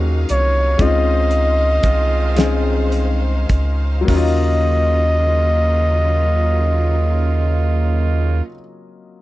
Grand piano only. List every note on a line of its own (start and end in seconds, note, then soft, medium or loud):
0.00 0.27 F#3 medium
0.00 0.28 A#3 medium
0.00 0.28 C#4 medium
0.00 0.29 D#4 medium
0.00 0.81 G4 medium
0.00 0.32 G#4 medium
0.78 1.82 G#3 medium
0.78 1.82 C4 medium
0.78 1.83 C#4 medium
0.78 1.83 D#4 medium
0.78 1.84 F4 medium
2.36 3.48 G#3 medium
2.36 3.48 C4 medium
2.36 3.49 C#4 medium
2.36 3.49 D#4 medium
2.36 3.50 G#4 medium
4.01 8.43 F#3 medium
4.05 8.47 A#3 medium
4.05 8.51 C#4 medium
4.12 8.55 D#4 medium
4.16 8.59 F4 medium